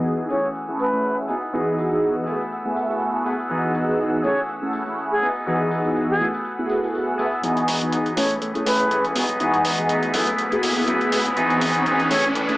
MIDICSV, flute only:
0, 0, Header, 1, 2, 480
1, 0, Start_track
1, 0, Key_signature, 4, "major"
1, 0, Tempo, 491803
1, 1497, Time_signature, 4, 2, 24, 8
1, 12273, End_track
2, 0, Start_track
2, 0, Title_t, "Flute"
2, 0, Program_c, 0, 73
2, 298, Note_on_c, 0, 73, 84
2, 461, Note_off_c, 0, 73, 0
2, 780, Note_on_c, 0, 71, 89
2, 1150, Note_off_c, 0, 71, 0
2, 4137, Note_on_c, 0, 73, 87
2, 4301, Note_off_c, 0, 73, 0
2, 4989, Note_on_c, 0, 68, 94
2, 5137, Note_off_c, 0, 68, 0
2, 5950, Note_on_c, 0, 68, 94
2, 6111, Note_off_c, 0, 68, 0
2, 7974, Note_on_c, 0, 73, 87
2, 8139, Note_off_c, 0, 73, 0
2, 8455, Note_on_c, 0, 71, 93
2, 8827, Note_off_c, 0, 71, 0
2, 11816, Note_on_c, 0, 73, 87
2, 11981, Note_off_c, 0, 73, 0
2, 12273, End_track
0, 0, End_of_file